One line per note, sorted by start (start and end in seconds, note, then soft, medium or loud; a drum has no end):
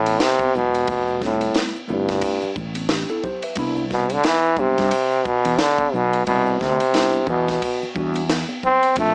0.00 0.17 A1 medium
0.00 0.24 A2 loud
0.06 ride medium
0.06 high conga medium
0.06 shaker soft
0.20 0.57 C3 loud
0.20 snare loud
0.20 hi-hat pedal medium
0.20 ride medium
0.20 shaker medium
0.39 kick medium
0.39 high conga medium
0.39 shaker soft
0.55 0.84 E1 medium
0.55 1.22 B2 medium
0.55 low conga medium
0.55 shaker medium
0.74 ride soft
0.74 shaker soft
0.87 1.47 F1 medium
0.87 kick loud
0.87 ride medium
0.87 shaker medium
1.07 shaker soft
1.21 1.62 A2 medium
1.21 1.71 G3 medium
1.21 1.71 A3 medium
1.21 1.72 C4 medium
1.21 1.30 D4 medium
1.21 kick medium
1.21 snare soft
1.21 high conga soft
1.21 shaker medium
1.30 1.75 E4 medium
1.41 ride medium
1.41 shaker soft
1.54 snare loud
1.54 hi-hat pedal medium
1.54 ride medium
1.54 high conga soft
1.54 shaker medium
1.75 shaker soft
1.87 2.19 G1 loud
1.87 2.38 G3 medium
1.87 2.38 A3 medium
1.87 2.39 C4 medium
1.87 2.39 E4 medium
1.87 low conga medium
1.87 shaker soft
1.92 2.54 G2 medium
2.08 kick medium
2.08 snare soft
2.08 ride medium
2.08 shaker soft
2.21 kick medium
2.21 ride medium
2.21 shaker medium
2.42 muted fretless electric bass stroke medium
2.42 shaker soft
2.55 3.03 A1 medium
2.55 kick loud
2.55 shaker soft
2.74 ride medium
2.74 high conga medium
2.74 shaker soft
2.89 3.09 D4 medium
2.89 3.09 G4 medium
2.89 snare loud
2.89 hi-hat pedal medium
2.89 ride medium
2.89 shaker soft
3.09 3.24 E4 medium
3.09 3.23 A4 medium
3.09 high conga medium
3.09 shaker soft
3.24 3.43 G4 soft
3.24 3.42 C5 medium
3.24 kick medium
3.24 low conga medium
3.24 shaker medium
3.42 3.76 B4 medium
3.42 3.76 E5 medium
3.42 ride medium
3.42 shaker soft
3.56 4.17 C2 loud
3.56 3.82 G3 medium
3.56 3.83 B3 medium
3.56 3.83 D4 medium
3.56 3.84 E4 loud
3.56 kick loud
3.56 ride medium
3.56 shaker medium
3.76 shaker soft
3.90 4.14 B2 medium
3.90 kick medium
3.90 snare soft
3.90 high conga soft
3.90 shaker medium
4.10 4.27 D3 medium
4.10 ride medium
4.10 shaker soft
4.23 4.61 E3 loud
4.23 snare medium
4.23 hi-hat pedal soft
4.23 ride medium
4.23 high conga soft
4.23 shaker medium
4.44 shaker soft
4.57 5.27 C3 medium
4.57 4.83 G3 medium
4.57 4.84 B3 medium
4.57 4.84 D4 medium
4.57 4.85 G4 medium
4.57 kick medium
4.57 low conga medium
4.57 shaker soft
4.78 4.91 G2 medium
4.78 kick medium
4.78 snare soft
4.78 ride soft
4.78 shaker soft
4.91 ride medium
4.91 shaker medium
5.12 shaker soft
5.25 5.61 B2 medium
5.25 kick loud
5.25 shaker soft
5.45 5.58 E2 loud
5.45 ride medium
5.45 high conga medium
5.45 shaker soft
5.59 5.95 D3 loud
5.59 snare loud
5.59 hi-hat pedal medium
5.59 ride medium
5.59 shaker medium
5.78 kick medium
5.78 high conga medium
5.78 shaker soft
5.94 6.23 B1 medium
5.94 6.26 B2 medium
5.94 low conga medium
5.94 shaker soft
6.13 ride soft
6.13 shaker medium
6.27 6.57 C2 loud
6.27 6.62 B2 medium
6.27 kick loud
6.27 ride medium
6.27 shaker medium
6.46 shaker soft
6.60 6.78 D2 loud
6.60 7.28 C3 loud
6.60 kick medium
6.60 snare soft
6.60 high conga soft
6.60 shaker soft
6.80 ride medium
6.80 shaker soft
6.93 7.19 G3 medium
6.93 7.19 B3 medium
6.93 7.20 D4 medium
6.93 7.20 E4 medium
6.93 snare loud
6.93 hi-hat pedal medium
6.93 ride medium
6.93 high conga soft
6.93 shaker medium
7.14 shaker soft
7.27 7.57 E2 loud
7.27 7.92 B2 medium
7.27 kick medium
7.27 low conga medium
7.27 shaker medium
7.47 kick medium
7.47 snare soft
7.47 ride medium
7.47 shaker soft
7.62 kick medium
7.62 ride loud
7.62 shaker medium
7.82 muted fretless electric bass stroke soft
7.82 shaker soft
7.95 8.43 E2 medium
7.95 8.21 G3 medium
7.95 8.21 B3 medium
7.95 8.21 D4 medium
7.95 8.22 F#4 medium
7.95 kick loud
7.95 shaker soft
8.14 ride medium
8.14 high conga medium
8.14 shaker soft
8.29 snare loud
8.29 hi-hat pedal medium
8.29 ride medium
8.29 shaker medium
8.48 high conga medium
8.48 shaker soft
8.63 8.95 C4 loud
8.63 kick medium
8.63 low conga medium
8.63 shaker medium
8.82 ride medium
8.82 shaker medium
8.95 9.14 A#1 loud
8.95 9.14 A3 medium
8.95 9.14 A3 loud
8.95 9.14 C4 medium
8.95 9.14 D4 medium
8.95 9.14 F4 medium
8.95 kick loud
8.95 ride medium
8.95 shaker medium